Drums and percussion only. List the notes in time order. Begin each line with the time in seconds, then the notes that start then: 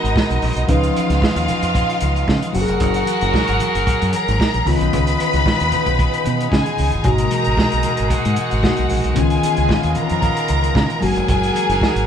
0.05 closed hi-hat
0.16 kick, snare, muted conga
0.30 closed hi-hat, high conga
0.42 open hi-hat, high conga, low conga
0.57 closed hi-hat
0.69 kick, closed hi-hat, muted conga, low conga
0.83 closed hi-hat
0.96 closed hi-hat, muted conga, high conga
1.10 snare, closed hi-hat
1.22 kick, snare, high conga
1.36 closed hi-hat
1.48 closed hi-hat, high conga, low conga
1.63 closed hi-hat
1.75 kick, closed hi-hat, muted conga
1.90 closed hi-hat
2.01 closed hi-hat, muted conga, high conga
2.16 closed hi-hat
2.28 kick, snare, muted conga
2.42 closed hi-hat, high conga
2.53 open hi-hat, high conga, low conga
2.68 closed hi-hat
2.80 kick, closed hi-hat, muted conga, low conga
2.94 closed hi-hat
3.06 closed hi-hat, muted conga, high conga
3.21 closed hi-hat
3.34 kick, snare, high conga
3.48 closed hi-hat
3.60 closed hi-hat, muted conga, high conga, low conga
3.75 closed hi-hat
3.87 kick, closed hi-hat, muted conga
4.02 closed hi-hat
4.13 closed hi-hat, muted conga, high conga
4.28 closed hi-hat
4.40 kick, snare
4.54 closed hi-hat, high conga
4.66 open hi-hat, muted conga, high conga, low conga
4.81 closed hi-hat
4.93 kick, closed hi-hat, muted conga, low conga
5.07 closed hi-hat
5.19 closed hi-hat, muted conga, high conga
5.33 snare, closed hi-hat
5.46 kick, snare, high conga
5.60 closed hi-hat
5.72 closed hi-hat, high conga, low conga
5.86 kick, closed hi-hat
5.99 kick, closed hi-hat
6.14 closed hi-hat
6.25 closed hi-hat, high conga
6.40 closed hi-hat
6.52 kick, snare
6.65 closed hi-hat, high conga
6.77 open hi-hat, muted conga, high conga, low conga
6.92 closed hi-hat
7.04 kick, closed hi-hat, low conga
7.18 closed hi-hat
7.31 closed hi-hat, high conga
7.44 closed hi-hat
7.57 kick, snare, high conga
7.72 closed hi-hat
7.83 closed hi-hat, high conga, low conga
7.97 closed hi-hat
8.10 kick, closed hi-hat, muted conga
8.25 closed hi-hat
8.36 closed hi-hat, high conga
8.51 closed hi-hat
8.63 kick, snare, muted conga
8.77 closed hi-hat, high conga
8.90 open hi-hat, muted conga, high conga, low conga
9.04 closed hi-hat
9.16 kick, closed hi-hat, muted conga, low conga
9.30 closed hi-hat
9.43 closed hi-hat, muted conga, high conga
9.57 closed hi-hat
9.69 kick, snare, muted conga, high conga
9.83 closed hi-hat
9.95 closed hi-hat, muted conga, high conga, low conga
10.10 closed hi-hat
10.22 kick, closed hi-hat, muted conga
10.37 closed hi-hat
10.48 closed hi-hat, muted conga, high conga
10.64 closed hi-hat
10.75 kick, snare
10.90 closed hi-hat, high conga
11.02 open hi-hat, muted conga, high conga, low conga
11.16 closed hi-hat
11.28 kick, closed hi-hat, low conga
11.43 closed hi-hat
11.55 closed hi-hat, high conga
11.70 snare, closed hi-hat
11.81 kick, snare, muted conga, high conga
11.96 closed hi-hat